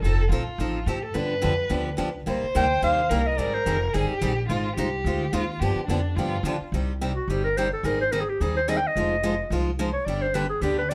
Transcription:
0.02 F1 F3 C4 D#4 A4
0.29 A#1 F3 C4 D#4 F4 A4
0.47 muted upright bass stroke
0.58 A1 F3 C4 D#4 A4
0.86 A2 F3 C4 D#4 G4 A4
1.03 A4
1.14 G2 D3 F3 B3 D4 G4 B4
1.42 F2 D3 F3 B3 D4 G4
1.69 D2 D3 F3 B3 D4 G4
1.97 C#2 D3 F3 B3 D4 G4
2.26 C2 C3 G3 A#3 D#4 G4 C5
2.43 muted upright bass stroke
2.55 D2 C3 G3 A#3 D#4 G4 G5
2.82 D#2 C3 G3 A#3 D#4 G4 F5
3.09 C2 C3 G3 A#3 D#4 G4 A#4
3.27 D#5
3.38 G#1 D#3 G3 C4 D#4 G#4 A#4 D5
3.54 C5
3.66 F1 D#3 G3 C4 D#4 G#4
3.93 G1 D#3 G3 C4 D#4 G#4
4.10 G4, muted upright bass stroke
4.21 A#1 D#3 G3 C4 D#4 G#4
4.49 G#1 G#3 D#4 F4 C5
4.76 C2 G#3 D#4 F4 G4 C5
5.04 D2 G#3 D#4 F4 C5
5.33 D#2 G#3 D#4 F4 C5
5.60 G2 D3 F3 B3 D4 G4
5.75 muted upright bass stroke
5.87 F2 D3 F3 B3 D4 G4
6.16 G2 D3 F3 B3 D4 F4 G4
6.43 D3 F3 B3 D4 G4
6.61 muted upright bass stroke
6.72 C2 C3 G3 C4 D#4 G4
7.01 C3 G3 C4 D#4 G4
7.16 F#4
7.28 G1 C3 G3 C4 D#4 G4
7.44 A#4
7.57 C3 G3 C4 D#4 G4 C5
7.73 A4
7.83 G#1 D#3 G3 C4 D#4 G#4 A#4
8.01 C5
8.12 D#3 G3 C4 D#4 G#4 A#4
8.21 G#4
8.29 G4
8.40 D#2 D#3 G3 C4 D#4 G#4
8.57 C5
8.68 D#3 G3 C4 D#4 G#4 D#5
8.77 G5
8.87 D#5
8.96 F1 F3 G#3 D#4 F4 C5
9.23 F3 G#3 D#4 F4 C5
9.50 C2 F3 G#3 D#4 F4 C5
9.79 F3 G#3 D#4 F4 C5
9.93 C#5
10.06 G1 D3 G3 B3 D4 G4 D5
10.22 C5
10.34 D3 G3 B3 D4 G4 B4
10.50 G#4
10.61 D2 D3 G3 B3 D4 G4
10.78 B4
10.90 D3 G3 B3 D5

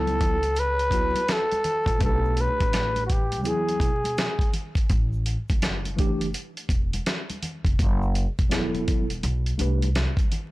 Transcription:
Already playing: C#2 F#3 B3 E4 A4
0.07 closed hi-hat, high conga, shaker
0.21 kick, closed hi-hat, high conga, low conga, shaker
0.43 closed hi-hat, high conga, shaker
0.55 closed hi-hat, shaker
0.59 B4
0.79 closed hi-hat, shaker
0.90 F#3 B3 E4 F#4, kick, closed hi-hat, shaker
1.16 closed hi-hat, high conga, shaker
1.28 A4, snare, closed hi-hat, shaker
1.51 closed hi-hat, high conga, shaker
1.64 closed hi-hat, low conga, shaker
1.86 A#1, kick, closed hi-hat, shaker
1.99 B1 A3 D4 G4 B4, kick, closed hi-hat, shaker
2.05 A4
2.24 shaker
2.37 closed hi-hat, shaker
2.41 B4
2.60 A1, kick, closed hi-hat, shaker
2.73 snare, closed hi-hat, low conga, shaker
2.96 closed hi-hat, high conga, shaker
3.06 F#4, kick, closed hi-hat, high conga, low conga, shaker
3.12 G4
3.32 closed hi-hat, high conga, shaker
3.42 E2 F#3 B3 E4 G4, closed hi-hat, shaker
3.47 G#4
3.68 closed hi-hat, shaker
3.80 B2, kick, closed hi-hat, shaker
4.04 closed hi-hat, high conga, shaker
4.17 snare, closed hi-hat, shaker
4.39 kick, closed hi-hat, high conga, shaker
4.53 closed hi-hat, low conga, shaker
4.75 kick, closed hi-hat, shaker
4.89 A1, kick, closed hi-hat, shaker
5.13 shaker
5.25 closed hi-hat, shaker
5.48 F#1, kick, closed hi-hat, shaker
5.62 snare, closed hi-hat, low conga, shaker
5.85 closed hi-hat, high conga, shaker
5.96 E3 A3 D4 G4, kick, closed hi-hat, high conga, low conga, shaker
6.21 closed hi-hat, high conga, shaker
6.33 closed hi-hat, shaker
6.57 closed hi-hat, shaker
6.69 E1, kick, closed hi-hat, shaker
6.93 closed hi-hat, high conga, shaker
7.06 snare, closed hi-hat, shaker
7.30 closed hi-hat, high conga, shaker
7.43 closed hi-hat, low conga, shaker
7.65 F1, kick, closed hi-hat, shaker
7.79 F#1, kick, closed hi-hat, shaker
8.02 shaker
8.14 closed hi-hat, shaker
8.38 E1, kick, closed hi-hat, shaker
8.49 F#3 B3 E4 G#4, snare, closed hi-hat, low conga, shaker
8.59 A4
8.75 closed hi-hat, high conga, shaker
8.88 kick, closed hi-hat, high conga, low conga, shaker
9.10 closed hi-hat, high conga, shaker
9.23 B1, closed hi-hat, shaker
9.46 closed hi-hat, shaker
9.58 C2 A3 D4 G4 B4, closed hi-hat, shaker
9.82 closed hi-hat, high conga, shaker
9.95 snare, closed hi-hat, shaker
10.17 kick, closed hi-hat, high conga, shaker
10.32 closed hi-hat, low conga, shaker

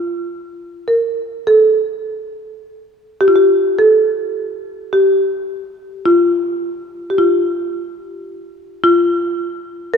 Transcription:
Already playing: D4 F4
0.88 A#4
1.47 A4
3.21 G4
3.28 F4
3.36 G4
3.79 A4
4.93 G4
6.06 F4
7.10 G4
7.18 F4
8.84 F4
9.94 A#4

